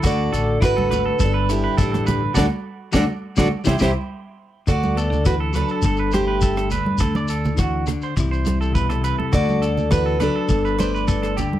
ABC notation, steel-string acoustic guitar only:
X:1
M:4/4
L:1/16
Q:1/4=103
K:Dmix
V:1 name="Steel-string acoustic guitar"
[Ad]4 [FB]4 [DA]2 [EG]2 [DG]3 z | [DFA] z3 [DFA] z2 [DFA] z [EGc] [EGc] z4 z | [Ad]4 [FB]2 [DA]4 [EG]4 z2 | z16 |
[Ad]4 [FB]2 [DA]4 [Bd]4 z2 |]